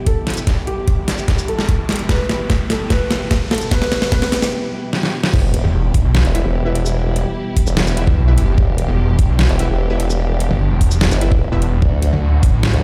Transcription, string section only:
Already playing: B2 E3 G3 E4 G4
5.34 B2 E3 G3 E4 G4
8.58 D4
11.82 A2 D3 F#3 F#4

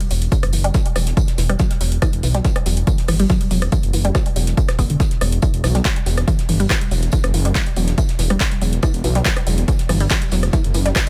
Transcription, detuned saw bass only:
0.11 E1
0.43 F#1
0.53 F#1
0.96 E1
1.38 E1
1.81 E1
2.13 E1
2.23 B1
2.66 E1
3.08 G1
3.51 E1
3.83 F#1
3.94 F#1
4.36 E1
4.79 E1
5.21 E1
5.54 E1
5.64 B1
6.06 E1
6.49 G1
6.91 E1
7.24 F#1
7.34 F#1
7.77 E1
8.19 E1
8.62 E1
8.94 E1
9.04 B1
9.47 E1
9.89 G1
10.32 E1
10.64 F#1
10.74 F#1

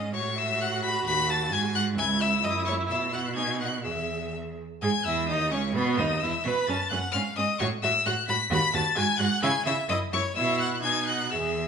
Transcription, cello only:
Already playing: G#2
0.14 A2
1.06 D#2
1.51 G#2
1.98 C#2
2.43 F#2
2.90 B2
3.85 E2
4.82 G#2
5.06 E2
5.30 D#2
5.53 C#2
5.75 B2
5.99 D#2
6.23 E2
6.45 B2
6.68 F#2
6.91 F#2
7.14 G#2
7.38 G#2
7.60 A2
7.83 A2
8.06 A2
8.28 A2
8.50 D#2
8.74 D#2
8.97 G#2
9.20 G#2
9.43 C#3
9.66 C#3
9.89 F#2
10.13 F#2
10.37 B2
10.84 B2
11.33 E2

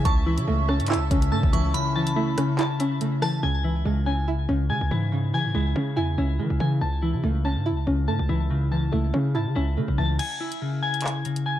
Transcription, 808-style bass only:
0.05 C#2
0.38 C#3
0.48 C#2
0.80 G#2
0.95 C#2
1.11 C#2
1.32 G#2
1.43 C#2
1.53 C#2
3.43 C#2
3.85 C#2
4.49 C#2
4.70 C#3
4.81 C#2
4.91 G#2
5.33 C#3
5.45 G#2
5.55 C#2
5.76 C#3
5.97 E2
6.18 C#2
6.39 E3
6.50 C#2
6.60 C#3
6.81 C#2
7.14 C#3
7.24 C#2
7.56 G#2
7.71 C#2
7.87 C#2
8.08 G#2
8.19 C#2
8.29 C#2
8.93 C#2
9.14 C#3
9.35 G#2
9.46 C#3
9.56 C#2
9.77 C#3
9.88 B1
9.98 C#2

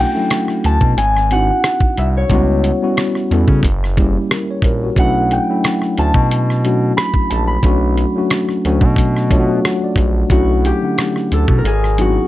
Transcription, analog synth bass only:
0.65 D2
0.81 B2
0.97 G#1
1.97 C2
2.30 C#2
3.31 E2
3.48 C#3
3.63 F#1
4.63 A#1
4.97 B1
5.98 D2
6.15 B2
7.31 A#1
7.64 B1
8.65 D2
8.82 B2
9.97 A#1
10.31 B1
11.32 D2
11.49 B2
11.64 G#1

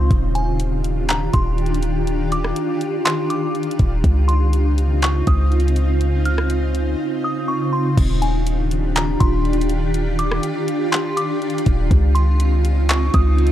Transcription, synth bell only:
0.35 G#5
1.09 A#5
1.33 C6
2.32 D6
3.05 C6
3.30 D6
4.28 C6
5.03 C#6
5.27 D#6
6.26 F6
7.24 D#6
7.48 C#6
7.73 C6
8.22 G#5
8.96 A#5
9.20 C6
10.19 D6
10.92 C6
11.17 D6
12.15 C6
12.90 C#6
13.14 D#6

